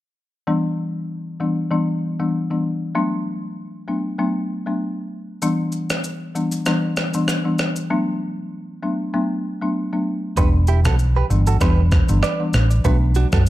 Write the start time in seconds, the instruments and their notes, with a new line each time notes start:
0.47 marimba E3 G3 B3 D4
1.40 marimba E3 G3 B3 D4
1.71 marimba E3 G3 B3 D4
2.19 marimba E3 G3 B3 D4
2.50 marimba E3 G3 B3 D4
2.95 marimba F#3 A3 B3 D4
3.88 marimba F#3 A3 B3 D4
4.18 marimba F#3 A3 B3 D4
4.66 marimba F#3 A3 B3 D4
5.42 marimba E3 G3 B3 D4, shaker
5.72 shaker
5.90 cross-stick, shaker
6.04 shaker
6.35 marimba E3 G3 B3 D4, shaker
6.52 shaker
6.66 marimba E3 G3 B3 D4, cross-stick, shaker
6.97 cross-stick, shaker
7.14 marimba E3 G3 B3 D4, shaker
7.28 cross-stick, shaker
7.45 marimba E3 G3 B3 D4
7.59 cross-stick, shaker
7.76 shaker
7.90 marimba F#3 A3 B3 D4
8.83 marimba F#3 A3 B3 D4
9.14 marimba F#3 A3 B3 D4
9.62 marimba F#3 A3 B3 D4
9.92 marimba F#3 A3 B3 D4
10.37 fingered electric bass E1, marimba E3 G3 B3 D4, clean electric guitar G4 B4, kick, shaker
10.67 clean electric guitar E4 G4, shaker
10.85 fingered electric bass B1, clean electric guitar F#4 A4, kick, cross-stick, shaker
10.99 shaker
11.16 clean electric guitar G4 B4
11.30 fingered electric bass G1, marimba E3 G3 B3 D4, shaker
11.47 clean electric guitar F#4 A4, shaker
11.61 fingered electric bass E1, marimba E3 G3 B3 D4, clean electric guitar G4 B4, kick, cross-stick, shaker
11.92 kick, cross-stick, shaker
12.09 fingered electric bass G1, marimba E3 G3 B3 D4, shaker
12.23 clean electric guitar B4 D5, cross-stick, shaker
12.40 marimba E3 G3 B3 D4
12.54 fingered electric bass A1, cross-stick, shaker
12.71 shaker
12.84 fingered electric bass B1, marimba F#3 A3 B3 D4, clean electric guitar F#4 B4, kick, shaker
13.15 clean electric guitar D4 F#4, shaker
13.32 fingered electric bass F#2, clean electric guitar F#4 A4, kick, cross-stick, shaker